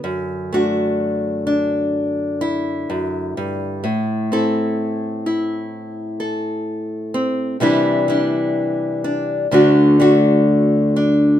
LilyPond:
\new Staff \with { instrumentName = "Nylon-string guitar" } { \time 4/4 \key d \mixolydian \tempo 4 = 63 << { d8 <a d' fis'>4 d'4 e'4.~ | e'8 <c' e' a'>4 e'4 a'4 c'8 | <e g d' e'>8 <g d' e'>4 d'8 <d a d' fis'>8 <a d' fis'>4 d'8 | } \\ { fis,2. fis,8 g,8 | a,1 | c2 d,2 | } >> }